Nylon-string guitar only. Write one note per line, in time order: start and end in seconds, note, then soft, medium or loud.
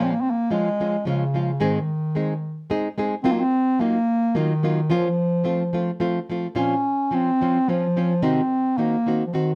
0.00 0.13 A#2 medium
0.00 0.13 F3 medium
0.00 0.13 G#3 medium
0.00 0.13 C#4 medium
0.00 0.14 F4 medium
0.50 0.68 F3 medium
0.50 0.68 G#3 medium
0.50 0.68 C#4 medium
0.50 0.69 F4 medium
0.80 0.96 F3 medium
0.80 0.96 G#3 medium
0.80 0.96 C#4 medium
0.80 0.96 F4 medium
1.05 1.23 F3 medium
1.05 1.24 G#3 medium
1.05 1.24 C#4 medium
1.05 1.24 F4 medium
1.34 1.50 F3 medium
1.34 1.50 G#3 medium
1.34 1.51 C#4 medium
1.34 1.51 F4 medium
1.60 1.78 G#2 medium
1.60 1.78 D#3 medium
1.60 1.78 G#3 medium
1.60 1.78 C4 medium
1.60 1.78 D#4 medium
1.60 1.78 G#4 medium
2.15 2.32 G#3 medium
2.15 2.33 C4 medium
2.15 2.33 D#4 medium
2.15 2.33 G#4 medium
2.70 2.87 G#3 medium
2.70 2.87 C4 medium
2.70 2.88 D#4 medium
2.70 2.88 G#4 medium
2.98 3.14 G#3 medium
2.98 3.14 C4 medium
2.98 3.14 D#4 medium
2.98 3.15 G#4 medium
3.24 3.42 F#3 medium
3.24 3.42 A#3 medium
3.24 3.42 D#4 medium
3.24 3.42 F4 loud
3.79 3.97 F#3 medium
3.79 3.97 A#3 medium
3.79 3.98 D#4 medium
3.79 3.97 F4 medium
4.35 4.52 F#3 medium
4.35 4.52 A#3 medium
4.35 4.53 D#4 medium
4.35 4.53 F4 medium
4.63 4.79 F#3 medium
4.63 4.79 A#3 medium
4.63 4.80 D#4 medium
4.63 4.80 F4 medium
4.90 5.07 F3 medium
4.90 5.07 A#3 medium
4.90 5.08 C#4 medium
4.90 5.08 F4 medium
5.44 5.62 F3 medium
5.44 5.62 A3 medium
5.44 5.63 C4 medium
5.44 5.63 F4 medium
5.73 5.90 F3 medium
5.73 5.90 A3 medium
5.73 5.90 C4 medium
5.73 5.90 F4 medium
6.00 6.18 F3 medium
6.00 6.18 A3 medium
6.00 6.19 C4 medium
6.00 6.19 F4 medium
6.30 6.46 F3 medium
6.30 6.46 A3 medium
6.30 6.47 C4 medium
6.30 6.47 F4 medium
6.55 6.74 A#2 medium
6.55 6.74 F3 medium
6.55 6.74 C4 medium
6.55 6.74 C#4 medium
6.55 6.74 F4 medium
7.11 7.29 F3 medium
7.11 7.30 C4 medium
7.11 7.30 C#4 medium
7.11 7.30 F4 medium
7.41 7.57 F3 medium
7.41 7.58 C4 medium
7.41 7.58 C#4 medium
7.41 7.58 F4 medium
7.68 7.86 F3 medium
7.68 7.86 C4 medium
7.68 7.86 C#4 medium
7.68 7.86 F4 medium
7.96 8.12 F3 medium
7.96 8.13 C4 medium
7.96 8.13 C#4 medium
7.96 8.13 F4 medium
8.22 8.40 C3 medium
8.22 8.40 D#3 medium
8.22 8.40 C4 medium
8.22 8.40 D#4 loud
8.22 8.41 F#4 loud
8.78 8.95 D#3 medium
8.78 8.96 C4 medium
8.78 8.96 D#4 medium
8.78 8.96 F#4 medium
9.06 9.22 D#3 medium
9.06 9.23 C4 medium
9.06 9.23 D#4 medium
9.06 9.23 F#4 medium
9.33 9.50 D#3 medium
9.33 9.51 C4 medium
9.33 9.51 D#4 medium
9.33 9.51 F#4 medium